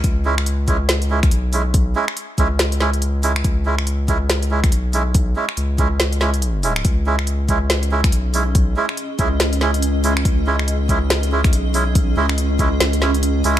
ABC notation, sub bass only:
X:1
M:4/4
L:1/8
Q:"Swing 16ths" 1/4=141
K:C#m
V:1 name="Sub bass" clef=bass
C,,6 B,,,2- | B,,, z2 C,,4- C,, | C,,6 B,,,2- | B,,, z C,,6 |
C,,6 B,,,2- | B,,, z2 C,,4- C,, | C,,6 B,,,2- | B,,, C,,3 C,,3 C,, |]